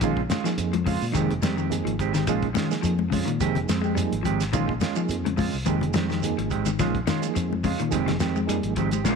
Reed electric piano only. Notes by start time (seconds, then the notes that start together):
0.02 F3 A#3 D#4 G#4
0.44 F3 A#3 D#4 G#4
1.12 F3 A#3 D#4 G#4
1.70 F3 A#3 D#4 G#4
2.27 F3 A#3 D#4 G#4
2.70 F3 A#3 D#4 G#4
3.40 F3 A#3 D#4 G#4
3.96 F3 A#3 D#4 G#4
4.54 F3 A#3 D#4 G#4
4.95 F3 A#3 D#4 G#4
5.65 F3 A#3 D#4 G#4
6.22 F3 A#3 D#4 G#4
6.79 F3 A#3 D#4 G#4
7.21 F3 A#3 D#4 G#4
7.89 F3 A#3 D#4 G#4
8.46 F3 A#3 D#4 G#4
9.04 A#3 C#4 F4